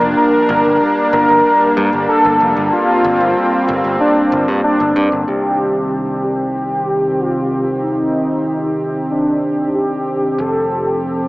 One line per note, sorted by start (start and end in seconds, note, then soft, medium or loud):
0.00 0.13 F1 medium
0.00 0.13 F3 medium
0.00 5.24 A#3 medium
0.00 2.69 D4 loud
0.17 5.24 G3 medium
0.17 1.00 A#4 loud
0.49 0.61 G1 loud
0.65 0.77 G1 medium
1.13 1.25 G1 loud
1.13 1.96 A#4 loud
1.29 1.41 G1 medium
1.77 1.89 G2 medium
1.93 2.05 G1 medium
2.09 2.57 A4 loud
2.25 2.37 G1 medium
2.41 2.53 F1 medium
2.57 2.69 G1 medium
2.72 5.25 C4 loud
2.72 3.87 F4 loud
3.04 3.16 G1 medium
3.21 3.32 G1 medium
3.68 3.80 G1 loud
3.84 3.96 G1 medium
4.00 4.49 D4 medium
4.32 4.44 G1 loud
4.48 4.60 G2 medium
4.64 5.12 D4 loud
4.80 4.92 G1 medium
4.96 5.08 G2 loud
5.12 5.24 G1 medium
5.28 10.35 C2 medium
5.28 10.34 C3 medium
5.28 10.34 D#3 medium
5.28 11.28 C4 medium
5.28 11.28 G4 medium
5.28 6.11 G4 loud
6.24 7.21 G4 loud
7.19 7.68 F4 medium
7.83 8.98 D#4 loud
9.11 9.59 D4 medium
9.75 10.40 G4 medium
10.38 11.28 F1 medium
10.38 11.28 F3 medium
10.38 11.28 A4 medium
10.38 11.21 A4 loud